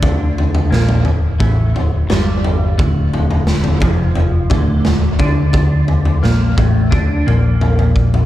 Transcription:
<<
  \new Staff \with { instrumentName = "Clean electric guitar" } { \clef bass \time 4/4 \key d \minor \tempo 4 = 87 d4 bes,8 d,8 a,8 d,8 g,4 | d,4. f,4 d,4 d8~ | d4 bes,8 a,8 d8 bes,4. | }
  \new Staff \with { instrumentName = "Fingered electric bass" } { \clef bass \time 4/4 \key d \minor d,4 bes,,8 d,,8 a,,8 d,,8 g,,4 | d,,4. f,,4 d,,4 d,8~ | d,4 bes,,8 a,,8 d,8 bes,,4. | }
  \new DrumStaff \with { instrumentName = "Drums" } \drummode { \time 4/4 <bd tomfh>8 tomfh16 tomfh16 sn16 tomfh16 tomfh8 <bd tomfh>8 tomfh8 <sn tomfh>8 tomfh8 | <bd tomfh>8 tomfh16 tomfh16 sn16 tomfh16 <bd tomfh>8 tomfh8 <bd tomfh>8 <sn tomfh>8 <bd tomfh>8 | <bd tomfh>8 tomfh16 tomfh16 sn8 <bd tomfh>8 <bd tomfh>8 tomfh8 tomfh16 tomfh16 bd16 tomfh16 | }
>>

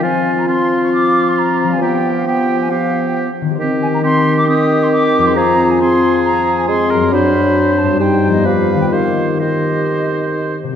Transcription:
<<
  \new Staff \with { instrumentName = "Flute" } { \time 4/4 \key c \minor \tempo 4 = 135 aes''8. bes''16 c'''8. des'''16 d'''8. c'''16 bes''8. aes''16 | g''8. f''16 g''8. aes''16 f''8. g''16 r4 | r8 aes''16 bes''16 c'''8. d'''16 ees'''8. c'''16 d'''8. c'''16 | bes''8. aes''16 c'''4 bes''8. aes''16 c'''4 |
b''4. a''8 \tuplet 3/2 { g''4 ees''8 } f''8. g''16 | f''4 ees''2 r4 | }
  \new Staff \with { instrumentName = "Oboe" } { \time 4/4 \key c \minor f'4 f'2. | g'4 g'4 g'4. r8 | g'4 g'4 g'2 | aes'4 aes'2 aes'8 bes'8 |
c''2 c''4 b'4 | c''4 c''2~ c''8 r8 | }
  \new Staff \with { instrumentName = "Harp" } { \time 4/4 \key c \minor <f c' f' c''>1 | <f d' g' b'>1 | <ees c' g' c''>1 | <f, c' aes' c''>1 |
<fis, c' a' d''>2 <g, c' g' ees''>4 <f, b g' d''>4 | <ees c' g' ees''>1 | }
  \new Staff \with { instrumentName = "Clarinet" } { \time 4/4 \key c \minor c'4 c'2. | b4 b4 b4. r8 | c'4 c'4 c'2 | c'4 c'2 c'4 |
d'2 ees'4 g'4 | g'4 g'2~ g'8 r8 | }
  \new Staff \with { instrumentName = "Bassoon" } { \clef bass \time 4/4 \key c \minor f1 | f2.~ f8 r8 | ees1 | f2. aes4 |
fis2 g4 f4 | ees2.~ ees8 r8 | }
>>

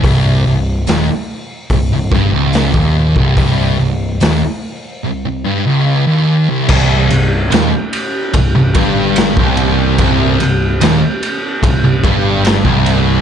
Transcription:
<<
  \new Staff \with { instrumentName = "Distorted electric guitar" } { \clef bass \time 4/4 \key c \minor \tempo 4 = 73 c,8 c,8 ees,16 r8. c,16 c,16 g,16 des,8 ees,8 c,16 | c,8 c,8 ees,16 r8. c,16 c,16 g,16 des,8 ees,8 c,16 | c,8 c,8 ees,16 r8. c,16 c,16 g,8. c,8. | c,8 c,8 ees,16 r8. c,16 c,16 g,8. c,8. | }
  \new Staff \with { instrumentName = "Distorted electric guitar" } { \clef bass \time 4/4 \key c \minor c,8 c,8 ees,16 r8. c,16 c,16 g,16 des,8 ees,8 c,16 | c,8 c,8 ees,16 r8. c,16 c,16 g,16 des,8 ees,8 c,16 | c,8 c,8 ees,16 r8. c,16 c,16 g,8. c,8. | c,8 c,8 ees,16 r8. c,16 c,16 g,8. c,8. | }
  \new Staff \with { instrumentName = "Distorted electric guitar" } { \clef bass \time 4/4 \key c \minor r1 | r1 | c,8 c,8 ees,16 r8. c,16 c,16 g,8. c,8. | c,8 c,8 ees,16 r8. c,16 c,16 g,8. c,8. | }
  \new Staff \with { instrumentName = "Picked electric bass" } { \clef bass \time 4/4 \key c \minor c,,8 c,,8 ees,,16 r8. c,,16 c,,16 g,,16 des,,8 ees,,8 c,,16 | c,,8 c,,8 ees,,16 r2 r8. | c,,8 c,,8 ees,,16 r8. c,,16 c,,16 g,,8. c,,8. | c,,8 c,,8 ees,,16 r8. c,,16 c,,16 g,,8. c,,8. | }
  \new DrumStaff \with { instrumentName = "Drums" } \drummode { \time 4/4 <hho bd>4 <hho sn>4 <hho bd>8 <bd sn>8 <hho sn>16 bd8 bd16 | <hho bd>4 <hho sn>4 r4 r4 | <cymc bd>8 cymr8 <cymr sn>8 cymr8 <bd cymr>8 <bd cymr>8 <cymr sn>16 bd16 cymr8 | <bd cymr>8 cymr8 <cymr sn>8 cymr8 <bd cymr>8 <bd cymr>8 <cymr sn>16 bd16 cymr8 | }
>>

